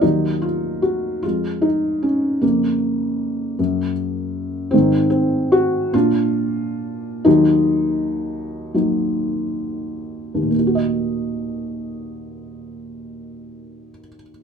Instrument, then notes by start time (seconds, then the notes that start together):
felt piano
0.01 D#2 F#3 D#4
0.42 F4
0.82 F#4
1.23 F2 G#3 F4
1.62 D#4
2.03 C#4
2.41 F2 C#3 A#3
3.59 F#2
4.71 G#2 D#3 C4
5.10 C4
5.52 F#4
5.93 A#2 D4 F4
7.25 D#2 F#3 D#4
8.74 F#3 A#3 D#4
10.34 D#2
10.42 A#2
10.51 A#3
10.59 D#4
10.67 F#4
10.75 D#5